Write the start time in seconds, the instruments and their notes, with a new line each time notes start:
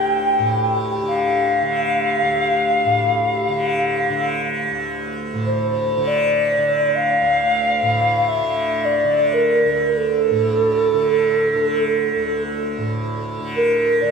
Already playing: tanpura D2 A2 D3, glass harmonica G4, ocarina G5
0.39 tanpura A2
1.02 tanpura D3
1.07 ocarina F5
1.62 tanpura D3
2.23 tanpura D2
2.85 tanpura A2
3.49 tanpura D3
4.10 tanpura D3
4.71 tanpura D2
5.34 tanpura A2
5.45 ocarina C5
5.98 tanpura D3
6.07 ocarina D5
6.58 tanpura D3
6.95 ocarina F5
7.22 tanpura D2
7.82 tanpura A2
8.28 ocarina E5
8.44 tanpura D3
8.84 ocarina D5
9.04 tanpura D3
9.33 ocarina A#4
9.66 tanpura D2
9.86 ocarina A#4
9.96 ocarina A4
10.31 tanpura A2
10.94 tanpura D3
11.55 tanpura D3
12.16 tanpura D2
12.78 tanpura A2
13.40 tanpura D3
13.56 ocarina A#4
14.01 tanpura D3, ocarina D5